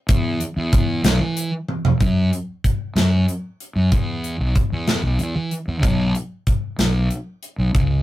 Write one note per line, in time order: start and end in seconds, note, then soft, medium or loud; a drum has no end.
0.09 0.38 E2 loud
0.09 kick loud
0.09 closed hi-hat medium
0.40 closed hi-hat medium
0.56 1.00 E2 medium
0.73 kick medium
0.73 closed hi-hat medium
1.04 1.19 B1 loud
1.04 snare loud
1.04 closed hi-hat medium
1.20 1.50 E3 loud
1.37 closed hi-hat medium
1.68 high tom medium
1.85 floor tom medium
2.00 2.29 F#2 medium
2.00 kick medium
2.00 closed hi-hat medium
2.33 closed hi-hat medium
2.64 kick medium
2.64 closed hi-hat medium
2.95 3.25 F#2 medium
2.95 snare loud
2.95 closed hi-hat medium
3.28 closed hi-hat medium
3.60 closed hi-hat medium
3.76 3.90 F#2 medium
3.92 4.36 E2 medium
3.92 kick medium
3.92 closed hi-hat medium
4.24 closed hi-hat medium
4.40 4.54 B1 medium
4.55 kick medium
4.55 closed hi-hat medium
4.72 5.01 E2 medium
4.87 snare loud
4.87 closed hi-hat medium
5.03 5.18 B1 medium
5.19 5.34 E2 medium
5.19 closed hi-hat medium
5.35 5.50 E3 medium
5.51 closed hi-hat medium
5.68 5.83 E2 medium
5.83 6.12 B1 medium
5.83 kick loud
5.83 closed hi-hat medium
6.15 closed hi-hat medium
6.47 kick medium
6.47 closed hi-hat medium
6.78 7.08 B1 medium
6.78 snare loud
6.78 closed hi-hat medium
7.11 closed hi-hat medium
7.43 closed hi-hat medium
7.58 7.73 B1 medium
7.75 8.03 C#2 medium
7.75 kick medium
7.75 closed hi-hat medium